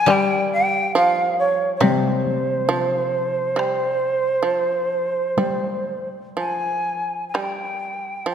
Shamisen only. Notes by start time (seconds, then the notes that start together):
0.08 G3
0.95 F3
1.81 G3
2.69 F3
3.56 G3
4.43 F3
5.38 G3
6.37 F3
7.35 G3
8.26 F3